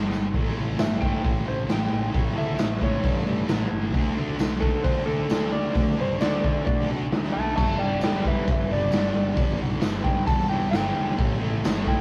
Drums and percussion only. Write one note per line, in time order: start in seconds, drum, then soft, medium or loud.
0.13 tambourine medium
0.34 kick loud
0.34 open hi-hat medium
0.78 snare loud
0.78 open hi-hat medium
0.78 tambourine medium
1.02 kick medium
1.25 kick loud
1.25 open hi-hat medium
1.69 snare loud
1.69 open hi-hat medium
1.69 tambourine medium
2.14 kick loud
2.14 open hi-hat medium
2.59 snare loud
2.59 open hi-hat medium
2.59 tambourine loud
2.81 kick medium
3.03 kick loud
3.03 open hi-hat medium
3.48 snare loud
3.48 open hi-hat medium
3.48 tambourine medium
3.94 kick loud
3.94 open hi-hat medium
4.39 snare loud
4.39 open hi-hat medium
4.39 tambourine loud
4.62 kick medium
4.84 kick loud
4.84 open hi-hat medium
5.29 snare loud
5.29 open hi-hat medium
5.29 tambourine medium
5.74 kick loud
5.74 open hi-hat medium
6.20 snare loud
6.20 open hi-hat medium
6.20 tambourine loud
6.44 kick medium
6.67 kick loud
6.67 open hi-hat medium
7.12 snare loud
7.12 open hi-hat medium
7.12 tambourine medium
7.58 kick loud
7.58 crash medium
8.01 snare loud
8.01 open hi-hat medium
8.01 tambourine loud
8.25 kick medium
8.48 kick loud
8.48 open hi-hat medium
8.92 snare loud
8.92 open hi-hat medium
8.92 tambourine medium
9.36 kick loud
9.36 open hi-hat medium
9.81 snare loud
9.81 open hi-hat medium
9.81 tambourine loud
10.04 kick medium
10.27 kick loud
10.27 open hi-hat medium
10.72 snare loud
10.72 open hi-hat medium
10.72 tambourine loud
11.18 kick loud
11.18 open hi-hat medium
11.65 snare loud
11.65 open hi-hat medium
11.65 tambourine loud
11.87 kick medium